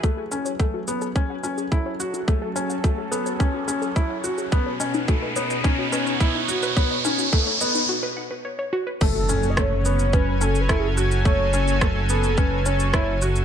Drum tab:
CC |----------------|----------------|----------------|----------------|
SH |x-xxx-xxx-xxx-xx|x-xxx-xxx-xxx-xx|x-xxx-xxx-xxx-xx|x-xxx-xx--------|
SD |----------------|----------------|----------------|----------------|
BD |o---o---o---o---|o---o---o---o---|o---o---o---o---|o---o-----------|

CC |x---------------|----------------|
SH |x-xxx-xxx-xxx-xx|x-xxx-xxx-xxx-xx|
SD |----r-------r---|----r-------r---|
BD |o---o---o---o---|o---o---o---o---|